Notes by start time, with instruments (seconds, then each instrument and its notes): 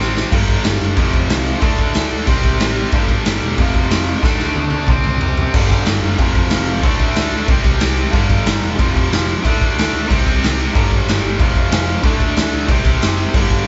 Already playing: overdriven electric guitar C3 G3 C4
0.00 picked electric bass A1, snare
0.17 snare
0.31 picked electric bass G1, overdriven electric guitar G2 D3 G3, kick, crash
0.48 kick, crash
0.64 picked electric bass G1, snare, crash
0.81 picked electric bass F#1, crash
0.96 picked electric bass F1, overdriven electric guitar F2 C3 F3, kick, crash
1.13 picked electric bass F1, kick, crash
1.29 picked electric bass C2, snare, crash
1.46 crash
1.60 picked electric bass D2, overdriven electric guitar D3 A3 D4, kick, crash
1.78 picked electric bass D2, kick, crash
1.94 picked electric bass D2, snare, crash
2.11 picked electric bass D2, crash
2.25 picked electric bass C2, overdriven electric guitar C3 G3, kick, crash
2.29 overdriven electric guitar C4
2.43 picked electric bass C2, kick, crash
2.60 picked electric bass A1, snare, crash
2.76 crash
2.92 picked electric bass G1, overdriven electric guitar G2 D3, kick, crash
2.96 overdriven electric guitar G3
3.08 kick, crash
3.25 picked electric bass G1, snare, crash
3.42 picked electric bass E1, crash
3.57 picked electric bass F1, overdriven electric guitar F2 C3 F3, kick, crash
3.74 picked electric bass F1, kick, crash
3.91 picked electric bass F1, snare, crash
4.07 crash
4.22 picked electric bass D2, overdriven electric guitar D3 A3 D4, kick, snare
4.39 picked electric bass D2, snare
4.55 picked electric bass D2, high tom
4.70 picked electric bass D2, high tom
4.87 picked electric bass C2, overdriven electric guitar C3 G3, kick, mid tom
4.91 overdriven electric guitar C4
5.04 picked electric bass C2, mid tom
5.21 picked electric bass C2, floor tom
5.37 floor tom
5.53 picked electric bass G1, overdriven electric guitar G2 D3 G3, kick, crash
5.70 kick, crash
5.86 picked electric bass G1, snare, crash
6.03 picked electric bass F#1, crash
6.18 picked electric bass F1, overdriven electric guitar F2 C3 F3, kick, crash
6.35 picked electric bass F1, kick, crash
6.50 picked electric bass F1, snare, crash
6.67 crash
6.83 picked electric bass D2, overdriven electric guitar D3 A3, kick, crash
6.88 overdriven electric guitar D4
6.99 picked electric bass D2, kick, crash
7.16 picked electric bass D2, snare, crash
7.31 picked electric bass D2, crash
7.47 picked electric bass C2, overdriven electric guitar C3 G3 C4, kick, crash
7.64 picked electric bass C2, kick, crash
7.80 picked electric bass C2, snare, crash
7.97 crash
8.11 picked electric bass G1, overdriven electric guitar G2 D3 G3, kick, crash
8.30 kick, crash
8.46 picked electric bass G1, snare, crash
8.63 picked electric bass E1, crash
8.77 picked electric bass F1, overdriven electric guitar F2 C3 F3, kick, crash
8.96 picked electric bass F1, kick, crash
9.10 picked electric bass F1, snare, crash
9.29 crash
9.43 picked electric bass D2, overdriven electric guitar D3 A3 D4, kick, crash
9.61 picked electric bass D2, kick, crash
9.77 picked electric bass D2, snare, crash
9.93 picked electric bass D2, crash
10.07 picked electric bass C2, overdriven electric guitar C3 G3 C4, kick
10.12 crash
10.27 picked electric bass C2, kick, crash
10.42 picked electric bass C2, snare, crash
10.60 crash
10.73 picked electric bass G1, overdriven electric guitar G2 D3 G3, kick, crash
10.91 kick, crash
11.07 picked electric bass G1, snare, crash
11.24 picked electric bass G1, crash
11.38 picked electric bass F1, overdriven electric guitar F2 C3, kick, crash
11.42 overdriven electric guitar F3
11.56 picked electric bass F1, kick, crash
11.72 picked electric bass F1, snare, crash
11.87 crash
12.03 picked electric bass D2, overdriven electric guitar D3 A3 D4, kick, crash
12.20 picked electric bass D2, kick, crash
12.37 picked electric bass D2, snare, crash
12.53 picked electric bass D2, crash
12.69 picked electric bass C2, overdriven electric guitar C3 G3 C4, kick, crash
12.85 picked electric bass C2, kick, crash
13.02 picked electric bass F#1, snare, crash
13.18 crash
13.34 picked electric bass G1, overdriven electric guitar G2 D3 G3, kick, crash
13.50 kick, crash